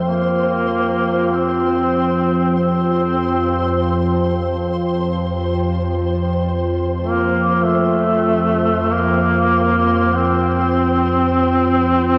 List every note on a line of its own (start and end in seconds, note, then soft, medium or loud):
0.00 12.18 F2 medium
0.00 12.18 F3 medium
0.00 12.18 F4 medium
0.00 12.18 C5 medium
0.00 12.18 G5 medium
0.06 1.35 A#3 medium
1.34 2.58 C4 medium
2.58 4.43 C4 medium
7.01 7.65 A#3 medium
7.64 8.93 A3 medium
8.91 10.18 A#3 medium
10.16 12.18 C4 loud